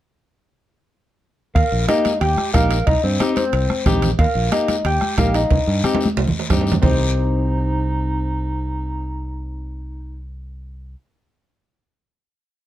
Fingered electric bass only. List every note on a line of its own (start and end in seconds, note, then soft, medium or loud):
1.55 1.62 D#2 loud
1.72 1.85 A#1 medium
2.21 2.34 D#2 medium
2.54 2.81 A#1 medium
2.87 2.94 C2 loud
3.04 3.17 G2 medium
3.53 3.66 C2 medium
3.86 4.12 A#1 medium
4.19 4.25 D#2 loud
4.35 4.48 A#1 medium
4.85 4.98 D#2 medium
5.18 5.44 A#1 medium
5.51 5.57 C2 loud
5.67 5.81 G2 medium
6.17 6.30 C2 medium
6.50 6.77 G2 medium
6.83 10.94 C2 medium